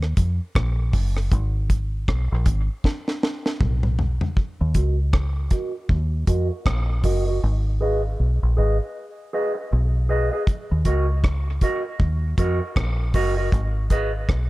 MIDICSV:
0, 0, Header, 1, 5, 480
1, 0, Start_track
1, 0, Key_signature, -6, "minor"
1, 0, Tempo, 762389
1, 829, Time_signature, 4, 2, 24, 8
1, 9127, End_track
2, 0, Start_track
2, 0, Title_t, "Clean electric guitar"
2, 0, Program_c, 0, 27
2, 2991, Note_on_c, 0, 66, 78
2, 2997, Note_on_c, 0, 70, 85
2, 2999, Note_on_c, 0, 75, 89
2, 3115, Note_off_c, 0, 66, 0
2, 3118, Note_off_c, 0, 70, 0
2, 3119, Note_off_c, 0, 75, 0
2, 3473, Note_on_c, 0, 66, 65
2, 3476, Note_on_c, 0, 70, 75
2, 3481, Note_on_c, 0, 75, 78
2, 3596, Note_off_c, 0, 66, 0
2, 3598, Note_off_c, 0, 70, 0
2, 3600, Note_off_c, 0, 75, 0
2, 3950, Note_on_c, 0, 66, 83
2, 3955, Note_on_c, 0, 70, 87
2, 3959, Note_on_c, 0, 75, 88
2, 4075, Note_off_c, 0, 66, 0
2, 4078, Note_off_c, 0, 70, 0
2, 4079, Note_off_c, 0, 75, 0
2, 4430, Note_on_c, 0, 66, 72
2, 4437, Note_on_c, 0, 70, 81
2, 4439, Note_on_c, 0, 75, 85
2, 4555, Note_off_c, 0, 66, 0
2, 4559, Note_off_c, 0, 70, 0
2, 4560, Note_off_c, 0, 75, 0
2, 4577, Note_on_c, 0, 75, 60
2, 4582, Note_on_c, 0, 70, 48
2, 4586, Note_on_c, 0, 66, 52
2, 4642, Note_off_c, 0, 75, 0
2, 4645, Note_off_c, 0, 70, 0
2, 4647, Note_off_c, 0, 66, 0
2, 4915, Note_on_c, 0, 68, 82
2, 4919, Note_on_c, 0, 71, 85
2, 4923, Note_on_c, 0, 75, 94
2, 5038, Note_off_c, 0, 68, 0
2, 5040, Note_off_c, 0, 71, 0
2, 5042, Note_off_c, 0, 75, 0
2, 5395, Note_on_c, 0, 68, 68
2, 5399, Note_on_c, 0, 71, 69
2, 5404, Note_on_c, 0, 75, 74
2, 5518, Note_off_c, 0, 68, 0
2, 5520, Note_off_c, 0, 71, 0
2, 5523, Note_off_c, 0, 75, 0
2, 5876, Note_on_c, 0, 68, 72
2, 5880, Note_on_c, 0, 71, 81
2, 5883, Note_on_c, 0, 75, 89
2, 5999, Note_off_c, 0, 68, 0
2, 6001, Note_off_c, 0, 71, 0
2, 6002, Note_off_c, 0, 75, 0
2, 6353, Note_on_c, 0, 68, 71
2, 6357, Note_on_c, 0, 71, 74
2, 6361, Note_on_c, 0, 75, 85
2, 6478, Note_off_c, 0, 68, 0
2, 6480, Note_off_c, 0, 71, 0
2, 6481, Note_off_c, 0, 75, 0
2, 6494, Note_on_c, 0, 75, 53
2, 6500, Note_on_c, 0, 71, 46
2, 6503, Note_on_c, 0, 68, 49
2, 6562, Note_off_c, 0, 75, 0
2, 6565, Note_off_c, 0, 71, 0
2, 6566, Note_off_c, 0, 68, 0
2, 6834, Note_on_c, 0, 66, 80
2, 6838, Note_on_c, 0, 70, 81
2, 6842, Note_on_c, 0, 75, 75
2, 6958, Note_off_c, 0, 66, 0
2, 6960, Note_off_c, 0, 70, 0
2, 6962, Note_off_c, 0, 75, 0
2, 7318, Note_on_c, 0, 66, 68
2, 7322, Note_on_c, 0, 70, 67
2, 7326, Note_on_c, 0, 75, 70
2, 7440, Note_off_c, 0, 66, 0
2, 7442, Note_off_c, 0, 70, 0
2, 7444, Note_off_c, 0, 75, 0
2, 7796, Note_on_c, 0, 66, 81
2, 7802, Note_on_c, 0, 70, 87
2, 7806, Note_on_c, 0, 75, 82
2, 7919, Note_off_c, 0, 66, 0
2, 7922, Note_off_c, 0, 70, 0
2, 7924, Note_off_c, 0, 75, 0
2, 8275, Note_on_c, 0, 66, 82
2, 8280, Note_on_c, 0, 70, 88
2, 8283, Note_on_c, 0, 75, 92
2, 8399, Note_off_c, 0, 66, 0
2, 8401, Note_off_c, 0, 70, 0
2, 8403, Note_off_c, 0, 75, 0
2, 8418, Note_on_c, 0, 75, 59
2, 8422, Note_on_c, 0, 70, 58
2, 8426, Note_on_c, 0, 66, 48
2, 8484, Note_off_c, 0, 75, 0
2, 8486, Note_off_c, 0, 70, 0
2, 8488, Note_off_c, 0, 66, 0
2, 8756, Note_on_c, 0, 68, 70
2, 8761, Note_on_c, 0, 71, 89
2, 8765, Note_on_c, 0, 75, 92
2, 8879, Note_off_c, 0, 68, 0
2, 8882, Note_off_c, 0, 71, 0
2, 8884, Note_off_c, 0, 75, 0
2, 9127, End_track
3, 0, Start_track
3, 0, Title_t, "Fingered electric bass"
3, 0, Program_c, 1, 33
3, 0, Note_on_c, 1, 39, 95
3, 98, Note_off_c, 1, 39, 0
3, 112, Note_on_c, 1, 41, 77
3, 244, Note_off_c, 1, 41, 0
3, 354, Note_on_c, 1, 34, 103
3, 578, Note_off_c, 1, 34, 0
3, 593, Note_on_c, 1, 30, 77
3, 817, Note_off_c, 1, 30, 0
3, 835, Note_on_c, 1, 32, 108
3, 1287, Note_off_c, 1, 32, 0
3, 1314, Note_on_c, 1, 35, 76
3, 1445, Note_off_c, 1, 35, 0
3, 1462, Note_on_c, 1, 34, 80
3, 1549, Note_off_c, 1, 34, 0
3, 1554, Note_on_c, 1, 32, 87
3, 1685, Note_off_c, 1, 32, 0
3, 2276, Note_on_c, 1, 35, 98
3, 2633, Note_off_c, 1, 35, 0
3, 2903, Note_on_c, 1, 39, 91
3, 2990, Note_off_c, 1, 39, 0
3, 2995, Note_on_c, 1, 37, 88
3, 3447, Note_off_c, 1, 37, 0
3, 3715, Note_on_c, 1, 39, 87
3, 3939, Note_off_c, 1, 39, 0
3, 3955, Note_on_c, 1, 41, 76
3, 4087, Note_off_c, 1, 41, 0
3, 4196, Note_on_c, 1, 34, 93
3, 4420, Note_off_c, 1, 34, 0
3, 4436, Note_on_c, 1, 30, 70
3, 4660, Note_off_c, 1, 30, 0
3, 4680, Note_on_c, 1, 32, 98
3, 5131, Note_off_c, 1, 32, 0
3, 5161, Note_on_c, 1, 35, 70
3, 5290, Note_off_c, 1, 35, 0
3, 5306, Note_on_c, 1, 34, 75
3, 5393, Note_off_c, 1, 34, 0
3, 5402, Note_on_c, 1, 32, 88
3, 5531, Note_off_c, 1, 32, 0
3, 6124, Note_on_c, 1, 35, 92
3, 6479, Note_off_c, 1, 35, 0
3, 6747, Note_on_c, 1, 39, 86
3, 6833, Note_off_c, 1, 39, 0
3, 6838, Note_on_c, 1, 37, 89
3, 7291, Note_off_c, 1, 37, 0
3, 7558, Note_on_c, 1, 39, 84
3, 7782, Note_off_c, 1, 39, 0
3, 7798, Note_on_c, 1, 41, 83
3, 7929, Note_off_c, 1, 41, 0
3, 8040, Note_on_c, 1, 34, 85
3, 8263, Note_off_c, 1, 34, 0
3, 8277, Note_on_c, 1, 30, 71
3, 8502, Note_off_c, 1, 30, 0
3, 8519, Note_on_c, 1, 32, 98
3, 8971, Note_off_c, 1, 32, 0
3, 9001, Note_on_c, 1, 35, 83
3, 9127, Note_off_c, 1, 35, 0
3, 9127, End_track
4, 0, Start_track
4, 0, Title_t, "Muted clean electric guitar strokes"
4, 4095, Note_on_c, 9, 29, 42
4, 4158, Note_off_c, 9, 29, 0
4, 6013, Note_on_c, 9, 29, 56
4, 6076, Note_off_c, 9, 29, 0
4, 9127, End_track
5, 0, Start_track
5, 0, Title_t, "Drums"
5, 16, Note_on_c, 9, 37, 58
5, 79, Note_off_c, 9, 37, 0
5, 107, Note_on_c, 9, 36, 99
5, 107, Note_on_c, 9, 42, 79
5, 170, Note_off_c, 9, 36, 0
5, 170, Note_off_c, 9, 42, 0
5, 349, Note_on_c, 9, 36, 110
5, 354, Note_on_c, 9, 37, 115
5, 412, Note_off_c, 9, 36, 0
5, 417, Note_off_c, 9, 37, 0
5, 586, Note_on_c, 9, 46, 71
5, 588, Note_on_c, 9, 36, 75
5, 649, Note_off_c, 9, 46, 0
5, 651, Note_off_c, 9, 36, 0
5, 734, Note_on_c, 9, 37, 59
5, 797, Note_off_c, 9, 37, 0
5, 827, Note_on_c, 9, 44, 70
5, 829, Note_on_c, 9, 36, 108
5, 890, Note_off_c, 9, 44, 0
5, 892, Note_off_c, 9, 36, 0
5, 1069, Note_on_c, 9, 36, 85
5, 1069, Note_on_c, 9, 42, 69
5, 1132, Note_off_c, 9, 36, 0
5, 1132, Note_off_c, 9, 42, 0
5, 1310, Note_on_c, 9, 36, 107
5, 1314, Note_on_c, 9, 37, 98
5, 1373, Note_off_c, 9, 36, 0
5, 1377, Note_off_c, 9, 37, 0
5, 1547, Note_on_c, 9, 42, 74
5, 1548, Note_on_c, 9, 36, 88
5, 1610, Note_off_c, 9, 42, 0
5, 1611, Note_off_c, 9, 36, 0
5, 1789, Note_on_c, 9, 36, 88
5, 1795, Note_on_c, 9, 38, 57
5, 1852, Note_off_c, 9, 36, 0
5, 1858, Note_off_c, 9, 38, 0
5, 1938, Note_on_c, 9, 38, 48
5, 2001, Note_off_c, 9, 38, 0
5, 2035, Note_on_c, 9, 38, 77
5, 2098, Note_off_c, 9, 38, 0
5, 2177, Note_on_c, 9, 38, 59
5, 2240, Note_off_c, 9, 38, 0
5, 2270, Note_on_c, 9, 36, 116
5, 2271, Note_on_c, 9, 45, 94
5, 2333, Note_off_c, 9, 36, 0
5, 2334, Note_off_c, 9, 45, 0
5, 2413, Note_on_c, 9, 45, 71
5, 2476, Note_off_c, 9, 45, 0
5, 2510, Note_on_c, 9, 43, 74
5, 2573, Note_off_c, 9, 43, 0
5, 2651, Note_on_c, 9, 43, 79
5, 2714, Note_off_c, 9, 43, 0
5, 2750, Note_on_c, 9, 36, 105
5, 2813, Note_off_c, 9, 36, 0
5, 2987, Note_on_c, 9, 42, 67
5, 2990, Note_on_c, 9, 36, 82
5, 3050, Note_off_c, 9, 42, 0
5, 3053, Note_off_c, 9, 36, 0
5, 3231, Note_on_c, 9, 36, 101
5, 3233, Note_on_c, 9, 37, 100
5, 3294, Note_off_c, 9, 36, 0
5, 3296, Note_off_c, 9, 37, 0
5, 3466, Note_on_c, 9, 42, 73
5, 3469, Note_on_c, 9, 36, 85
5, 3529, Note_off_c, 9, 42, 0
5, 3532, Note_off_c, 9, 36, 0
5, 3710, Note_on_c, 9, 36, 100
5, 3773, Note_off_c, 9, 36, 0
5, 3950, Note_on_c, 9, 36, 98
5, 3950, Note_on_c, 9, 42, 84
5, 4013, Note_off_c, 9, 36, 0
5, 4013, Note_off_c, 9, 42, 0
5, 4191, Note_on_c, 9, 36, 106
5, 4196, Note_on_c, 9, 37, 110
5, 4254, Note_off_c, 9, 36, 0
5, 4259, Note_off_c, 9, 37, 0
5, 4430, Note_on_c, 9, 46, 66
5, 4431, Note_on_c, 9, 36, 73
5, 4493, Note_off_c, 9, 46, 0
5, 4494, Note_off_c, 9, 36, 0
5, 6592, Note_on_c, 9, 44, 63
5, 6593, Note_on_c, 9, 36, 112
5, 6655, Note_off_c, 9, 44, 0
5, 6656, Note_off_c, 9, 36, 0
5, 6831, Note_on_c, 9, 42, 70
5, 6833, Note_on_c, 9, 36, 78
5, 6894, Note_off_c, 9, 42, 0
5, 6896, Note_off_c, 9, 36, 0
5, 7075, Note_on_c, 9, 36, 109
5, 7078, Note_on_c, 9, 37, 102
5, 7138, Note_off_c, 9, 36, 0
5, 7141, Note_off_c, 9, 37, 0
5, 7312, Note_on_c, 9, 42, 74
5, 7313, Note_on_c, 9, 36, 75
5, 7375, Note_off_c, 9, 42, 0
5, 7376, Note_off_c, 9, 36, 0
5, 7553, Note_on_c, 9, 36, 105
5, 7616, Note_off_c, 9, 36, 0
5, 7793, Note_on_c, 9, 36, 93
5, 7794, Note_on_c, 9, 42, 84
5, 7856, Note_off_c, 9, 36, 0
5, 7857, Note_off_c, 9, 42, 0
5, 8034, Note_on_c, 9, 36, 107
5, 8039, Note_on_c, 9, 37, 119
5, 8097, Note_off_c, 9, 36, 0
5, 8102, Note_off_c, 9, 37, 0
5, 8272, Note_on_c, 9, 46, 65
5, 8273, Note_on_c, 9, 36, 83
5, 8335, Note_off_c, 9, 46, 0
5, 8336, Note_off_c, 9, 36, 0
5, 8514, Note_on_c, 9, 36, 109
5, 8514, Note_on_c, 9, 44, 62
5, 8577, Note_off_c, 9, 36, 0
5, 8577, Note_off_c, 9, 44, 0
5, 8752, Note_on_c, 9, 42, 67
5, 8754, Note_on_c, 9, 36, 79
5, 8815, Note_off_c, 9, 42, 0
5, 8817, Note_off_c, 9, 36, 0
5, 8995, Note_on_c, 9, 36, 113
5, 8999, Note_on_c, 9, 37, 96
5, 9058, Note_off_c, 9, 36, 0
5, 9062, Note_off_c, 9, 37, 0
5, 9127, End_track
0, 0, End_of_file